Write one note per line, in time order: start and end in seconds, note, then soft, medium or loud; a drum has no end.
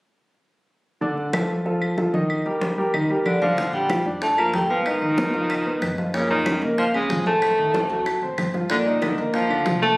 1.01 1.27 D3 medium
1.01 1.28 D4 medium
1.01 1.28 D5 medium
1.01 high conga soft
1.18 high conga soft
1.33 1.60 F3 medium
1.33 1.60 F4 medium
1.33 1.60 A4 medium
1.33 high conga medium
1.33 claves medium
1.50 high conga soft
1.65 1.92 F3 medium
1.65 1.92 F4 medium
1.65 1.92 A4 medium
1.65 high conga soft
1.82 high conga soft
1.82 claves medium
1.97 2.10 F3 medium
1.97 2.11 F4 medium
1.97 2.11 A4 medium
1.97 high conga medium
2.14 2.40 D#3 medium
2.14 2.40 D#4 medium
2.14 2.40 D#5 medium
2.14 high conga medium
2.30 high conga soft
2.30 claves medium
2.46 2.72 G3 medium
2.46 2.72 G4 medium
2.46 2.72 A#4 medium
2.46 high conga soft
2.61 high conga medium
2.78 2.91 G3 medium
2.78 2.91 G4 medium
2.78 2.91 A#4 medium
2.78 high conga soft
2.94 3.07 D#3 medium
2.94 3.07 D#4 medium
2.94 3.07 D#5 medium
2.94 high conga soft
2.94 claves medium
3.10 3.36 G3 medium
3.10 3.36 G4 medium
3.10 3.36 A#4 medium
3.10 high conga soft
3.25 3.41 D3 medium
3.25 3.41 D5 medium
3.25 high conga medium
3.25 claves medium
3.42 3.55 D3 medium
3.42 3.72 F3 medium
3.42 3.55 D4 medium
3.42 3.55 D5 medium
3.42 3.75 F5 medium
3.42 high conga medium
3.57 4.02 A#1 medium
3.57 3.84 D3 medium
3.57 3.84 D4 medium
3.57 high bongo medium
3.57 high conga soft
3.73 4.04 G3 medium
3.73 4.03 G5 medium
3.73 high conga soft
3.90 4.03 F3 medium
3.90 4.03 F4 medium
3.90 high bongo medium
3.90 high conga medium
3.90 claves medium
4.05 4.50 F2 medium
4.05 4.32 D4 medium
4.05 4.32 D5 medium
4.05 high conga soft
4.22 4.37 A3 medium
4.22 4.37 A5 loud
4.22 high bongo medium
4.22 high conga soft
4.38 4.51 F3 medium
4.38 4.53 A#3 medium
4.38 4.51 F4 medium
4.38 4.53 A#5 medium
4.38 high conga soft
4.38 claves medium
4.53 5.28 G#2 medium
4.53 4.69 G3 medium
4.53 4.67 A3 medium
4.53 4.67 A4 medium
4.53 4.69 G5 medium
4.53 high bongo medium
4.53 low bongo medium
4.53 high conga medium
4.70 4.85 F3 medium
4.70 4.96 B3 medium
4.70 4.96 B4 medium
4.70 4.85 F5 medium
4.86 5.94 D#3 medium
4.86 5.94 D#5 medium
4.86 high bongo medium
4.86 high conga soft
4.86 claves medium
5.01 5.15 D#3 medium
5.01 5.15 D#4 medium
5.01 high bongo soft
5.01 high conga soft
5.18 5.31 B2 medium
5.18 5.31 B3 medium
5.18 high bongo medium
5.18 high conga medium
5.34 5.78 C#2 medium
5.34 5.60 F3 medium
5.34 5.60 F4 medium
5.34 high bongo soft
5.34 high conga soft
5.50 high bongo medium
5.50 high conga soft
5.50 claves medium
5.66 5.92 B3 medium
5.66 5.92 B4 medium
5.66 high conga soft
5.82 6.56 F#2 medium
5.82 high bongo medium
5.82 low bongo medium
5.82 high conga medium
5.82 claves medium
5.98 6.11 F3 medium
5.98 6.11 F4 medium
5.98 high bongo soft
5.98 high conga medium
6.14 6.40 A#2 medium
6.14 6.29 C#3 medium
6.14 6.41 A#3 medium
6.14 6.31 C#5 medium
6.14 high bongo medium
6.14 high conga soft
6.30 6.60 D#3 medium
6.30 6.60 D#5 medium
6.30 high conga soft
6.46 6.59 C#3 medium
6.46 6.59 C#4 medium
6.46 high bongo medium
6.46 high conga medium
6.46 claves medium
6.62 7.06 C#2 medium
6.62 6.88 A#3 medium
6.62 6.88 A#4 medium
6.62 high conga soft
6.78 6.85 F3 medium
6.78 6.86 F5 medium
6.78 high bongo medium
6.78 high conga soft
6.94 7.07 C#3 medium
6.94 7.24 G#3 medium
6.94 7.07 C#4 medium
6.94 7.24 G#5 medium
6.94 high conga soft
6.94 claves medium
7.09 7.84 A1 medium
7.09 7.23 F3 medium
7.09 7.23 F4 medium
7.09 high bongo medium
7.09 low bongo medium
7.09 high conga medium
7.26 8.18 A3 medium
7.26 7.52 C4 medium
7.26 7.52 C5 medium
7.26 8.18 A5 medium
7.26 high conga medium
7.42 high bongo medium
7.42 high conga soft
7.42 claves medium
7.58 7.71 D#3 medium
7.58 7.71 D#4 medium
7.58 high bongo soft
7.58 high conga soft
7.74 7.87 C3 medium
7.74 7.88 C4 medium
7.74 high bongo medium
7.74 high conga medium
7.89 8.20 D2 medium
7.89 8.16 F#3 medium
7.89 8.17 F#4 medium
7.89 high bongo soft
7.89 high conga soft
8.06 high bongo medium
8.06 high conga soft
8.06 claves medium
8.22 8.37 A1 medium
8.22 8.49 C4 medium
8.22 8.49 C5 medium
8.22 high conga soft
8.38 9.12 G1 medium
8.38 high bongo medium
8.38 low bongo medium
8.38 high conga medium
8.38 claves medium
8.54 8.67 F3 medium
8.54 8.67 F4 medium
8.54 high bongo soft
8.54 high conga medium
8.70 8.97 A#2 medium
8.70 8.77 D3 medium
8.70 8.97 A#3 medium
8.70 8.77 D5 medium
8.70 high bongo medium
8.86 9.16 D#3 medium
8.86 9.16 D#5 medium
8.86 high conga soft
9.02 9.15 D3 medium
9.02 9.15 D4 medium
9.02 high bongo medium
9.02 high conga medium
9.02 claves medium
9.18 9.63 D2 medium
9.18 9.44 A#3 medium
9.18 9.45 A#4 medium
9.18 high conga soft
9.34 9.79 F3 medium
9.34 9.84 F5 medium
9.34 high bongo medium
9.34 high conga soft
9.50 9.63 D3 medium
9.50 9.63 D4 medium
9.50 high conga soft
9.50 claves medium
9.65 9.97 C2 medium
9.65 9.79 F3 medium
9.65 9.79 F4 medium
9.65 high bongo medium
9.65 low bongo medium
9.65 high conga medium
9.82 9.97 A#2 medium
9.82 9.97 A3 loud
9.82 9.97 A4 medium
9.82 9.97 A5 medium